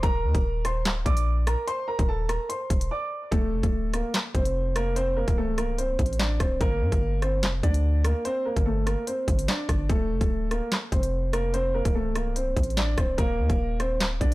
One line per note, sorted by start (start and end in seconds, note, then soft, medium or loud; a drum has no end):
0.03 0.25 D#1 loud
0.03 0.61 A#4 medium
0.03 0.61 A#5 loud
0.03 kick loud
0.03 closed hi-hat medium
0.24 0.34 D#2 loud
0.35 0.87 D#1 loud
0.35 kick medium
0.35 closed hi-hat medium
0.65 0.84 C5 medium
0.65 0.84 C6 medium
0.65 cross-stick medium
0.65 closed hi-hat medium
0.85 1.05 D1 loud
0.85 snare loud
0.85 clap medium
0.85 closed hi-hat medium
1.06 1.56 A#1 loud
1.06 1.45 D5 medium
1.06 1.44 D6 loud
1.06 kick loud
1.06 closed hi-hat medium
1.17 closed hi-hat medium
1.47 1.67 A#4 medium
1.47 1.66 A#5 medium
1.47 cross-stick loud
1.47 closed hi-hat medium
1.68 1.87 C5 medium
1.68 1.86 C6 loud
1.68 closed hi-hat medium
1.88 2.07 A#4 medium
1.88 2.07 A#5 medium
1.99 2.38 D#1 loud
1.99 kick loud
1.99 closed hi-hat medium
2.09 2.28 A4 medium
2.09 2.28 A5 medium
2.29 2.48 A#4 medium
2.29 2.48 A#5 medium
2.29 cross-stick medium
2.29 closed hi-hat medium
2.49 2.89 C5 medium
2.49 2.88 C6 medium
2.49 closed hi-hat medium
2.70 2.90 D#1 loud
2.70 kick loud
2.70 closed hi-hat medium
2.81 closed hi-hat medium
2.91 3.30 D5 medium
2.91 3.30 D6 medium
3.31 3.54 D1 loud
3.31 3.90 A3 medium
3.31 3.90 A4 medium
3.31 kick loud
3.31 closed hi-hat medium
3.52 3.63 F1 loud
3.63 4.03 D1 loud
3.63 kick medium
3.63 closed hi-hat medium
3.93 4.13 A#3 medium
3.93 4.12 A#4 medium
3.93 cross-stick medium
3.93 closed hi-hat medium
4.14 snare loud
4.14 clap medium
4.14 closed hi-hat medium
4.35 5.24 F1 loud
4.35 4.74 C4 medium
4.35 4.73 C5 medium
4.35 kick loud
4.35 closed hi-hat medium
4.45 closed hi-hat medium
4.76 4.95 A#3 medium
4.76 4.95 A#4 medium
4.76 cross-stick loud
4.76 closed hi-hat medium
4.96 5.16 C4 medium
4.96 5.15 C5 loud
4.96 closed hi-hat medium
5.17 5.36 A#3 medium
5.17 5.36 A#4 medium
5.28 5.96 C1 loud
5.28 kick medium
5.28 closed hi-hat medium
5.38 5.57 A3 medium
5.38 5.56 A4 medium
5.58 5.77 A#3 medium
5.58 5.77 A#4 medium
5.58 cross-stick medium
5.58 closed hi-hat medium
5.78 6.17 C4 medium
5.78 6.17 C5 medium
5.78 closed hi-hat medium
5.99 6.38 A1 loud
5.99 kick loud
5.99 closed hi-hat medium
6.06 closed hi-hat medium
6.13 closed hi-hat soft
6.19 6.39 D4 medium
6.19 6.38 D5 medium
6.19 snare loud
6.19 clap medium
6.19 closed hi-hat medium
6.40 6.60 C1 loud
6.40 6.59 C4 medium
6.40 6.59 C5 medium
6.40 kick loud
6.40 cross-stick loud
6.40 closed hi-hat medium
6.61 6.83 G1 loud
6.61 7.19 A#3 medium
6.61 7.19 A#4 loud
6.61 kick loud
6.61 closed hi-hat medium
6.81 6.92 G2 medium
6.92 7.44 G1 loud
6.92 kick medium
6.92 closed hi-hat medium
7.22 7.42 C4 medium
7.22 7.41 C5 medium
7.22 cross-stick medium
7.22 closed hi-hat medium
7.43 7.62 F1 loud
7.43 snare loud
7.43 clap loud
7.43 closed hi-hat medium
7.63 8.13 D2 loud
7.63 8.02 D4 medium
7.63 8.02 D5 medium
7.63 kick loud
7.63 closed hi-hat medium
7.74 closed hi-hat medium
8.05 8.24 A#3 medium
8.05 8.24 A#4 medium
8.05 cross-stick loud
8.05 closed hi-hat medium
8.25 8.44 C4 medium
8.25 8.44 C5 loud
8.25 closed hi-hat medium
8.45 8.65 A#3 medium
8.45 8.64 A#4 medium
8.57 8.96 G1 loud
8.57 kick medium
8.57 closed hi-hat medium
8.66 8.85 A3 medium
8.66 8.85 A4 medium
8.86 9.06 A#3 medium
8.86 9.05 A#4 medium
8.86 cross-stick medium
8.86 closed hi-hat medium
9.07 9.46 C4 medium
9.07 9.46 C5 medium
9.07 closed hi-hat medium
9.28 9.48 G1 loud
9.28 kick loud
9.28 closed hi-hat medium
9.39 closed hi-hat medium
9.48 9.87 D4 medium
9.48 9.87 D5 medium
9.48 snare loud
9.48 clap medium
9.48 closed hi-hat medium
9.69 9.89 G1 loud
9.69 kick medium
9.69 cross-stick loud
9.69 closed hi-hat medium
9.89 10.12 D1 loud
9.89 10.48 A3 medium
9.89 10.47 A4 loud
9.89 kick loud
9.89 closed hi-hat medium
10.10 10.20 F1 loud
10.21 10.60 D1 loud
10.21 kick medium
10.21 closed hi-hat medium
10.51 10.71 A#3 medium
10.51 10.70 A#4 medium
10.51 cross-stick medium
10.51 closed hi-hat medium
10.72 snare loud
10.72 clap loud
10.72 closed hi-hat medium
10.92 11.82 F1 loud
10.92 11.31 C4 medium
10.92 11.31 C5 medium
10.92 kick medium
10.92 closed hi-hat medium
11.03 closed hi-hat medium
11.33 11.53 A#3 medium
11.33 11.52 A#4 medium
11.33 cross-stick loud
11.33 closed hi-hat medium
11.54 11.73 C4 medium
11.54 11.73 C5 loud
11.54 closed hi-hat medium
11.74 11.94 A#3 medium
11.74 11.93 A#4 medium
11.85 12.54 C1 loud
11.85 kick medium
11.85 closed hi-hat medium
11.95 12.14 A3 medium
11.95 12.14 A4 medium
12.15 12.35 A#3 medium
12.15 12.34 A#4 medium
12.15 cross-stick medium
12.15 closed hi-hat medium
12.36 12.75 C4 medium
12.36 12.75 C5 medium
12.36 closed hi-hat medium
12.57 12.96 A1 loud
12.57 kick medium
12.57 closed hi-hat medium
12.63 closed hi-hat medium
12.70 closed hi-hat soft
12.77 12.96 D4 medium
12.77 12.96 D5 loud
12.77 snare loud
12.77 clap medium
12.77 closed hi-hat medium
12.98 13.17 C1 loud
12.98 13.17 C4 medium
12.98 13.17 C5 medium
12.98 kick loud
12.98 cross-stick loud
12.98 closed hi-hat medium
13.18 13.40 D#1 loud
13.18 13.76 A#3 medium
13.18 13.76 A#4 loud
13.18 kick loud
13.18 closed hi-hat medium
13.39 13.49 D#2 loud
13.50 14.02 D#1 loud
13.50 kick medium
13.50 closed hi-hat medium
13.80 13.99 C4 medium
13.80 13.99 C5 medium
13.80 cross-stick medium
13.80 closed hi-hat medium
14.00 14.20 D1 loud
14.00 snare loud
14.00 clap medium
14.00 closed hi-hat medium
14.21 14.34 A#1 loud
14.21 14.34 D4 medium
14.21 14.34 D5 medium
14.21 kick loud
14.21 closed hi-hat medium